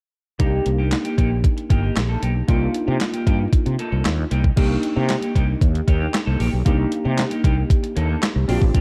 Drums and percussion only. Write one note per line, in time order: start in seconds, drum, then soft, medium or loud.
0.40 kick loud
0.40 closed hi-hat medium
0.66 closed hi-hat medium
0.91 snare loud
0.91 clap medium
0.91 closed hi-hat medium
1.05 closed hi-hat medium
1.18 kick medium
1.18 closed hi-hat medium
1.44 kick loud
1.44 closed hi-hat medium
1.58 closed hi-hat soft
1.70 kick medium
1.70 closed hi-hat medium
1.97 snare loud
1.97 clap medium
1.97 closed hi-hat medium
2.23 closed hi-hat medium
2.48 kick loud
2.48 closed hi-hat medium
2.74 closed hi-hat medium
3.00 snare loud
3.00 clap medium
3.00 closed hi-hat medium
3.14 closed hi-hat medium
3.27 kick medium
3.27 closed hi-hat medium
3.53 kick loud
3.53 closed hi-hat medium
3.66 closed hi-hat soft
3.79 closed hi-hat medium
4.05 snare loud
4.05 clap medium
4.05 closed hi-hat loud
4.31 closed hi-hat medium
4.44 kick medium
4.57 kick loud
4.57 closed hi-hat medium
4.57 crash medium
4.83 closed hi-hat medium
5.09 snare loud
5.09 clap medium
5.09 closed hi-hat medium
5.23 closed hi-hat medium
5.36 kick medium
5.36 closed hi-hat medium
5.61 kick loud
5.61 closed hi-hat medium
5.75 closed hi-hat soft
5.88 kick medium
5.88 closed hi-hat medium
6.14 snare loud
6.14 clap medium
6.14 closed hi-hat loud
6.40 open hi-hat medium
6.66 kick loud
6.66 closed hi-hat loud
6.92 closed hi-hat medium
7.18 snare loud
7.18 clap medium
7.18 closed hi-hat medium
7.31 closed hi-hat medium
7.44 kick medium
7.44 closed hi-hat medium
7.70 kick loud
7.70 closed hi-hat medium
7.84 closed hi-hat soft
7.97 closed hi-hat medium
8.23 snare loud
8.23 clap medium
8.23 closed hi-hat loud
8.49 open hi-hat medium
8.62 kick medium
8.75 kick loud
8.75 closed hi-hat loud